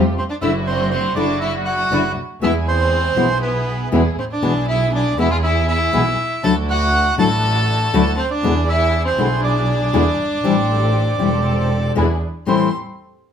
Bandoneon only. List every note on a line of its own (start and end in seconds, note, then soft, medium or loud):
0.19 0.24 C5 medium
0.30 0.36 D5 medium
0.41 0.53 E5 medium
0.67 0.89 C5 medium
0.91 1.14 C5 medium
1.15 1.39 D5 medium
1.41 1.52 E5 medium
1.65 2.12 F#5 loud
2.43 2.54 E5 loud
2.68 3.38 C5 loud
3.42 3.89 B4 medium
4.20 4.25 C5 medium
4.32 4.66 D5 medium
4.70 4.92 E5 loud
4.95 5.18 D5 medium
5.19 5.30 E5 medium
5.32 5.37 F5 medium
5.44 5.67 E5 loud
5.68 6.45 E5 loud
6.44 6.55 A5 loud
6.70 7.15 F#5 loud
7.19 8.21 A5 loud
8.19 8.30 C5 medium
8.31 8.69 D5 medium
8.69 9.03 E5 loud
9.07 9.41 C5 medium
9.44 11.92 D5 medium
12.48 12.71 C5 medium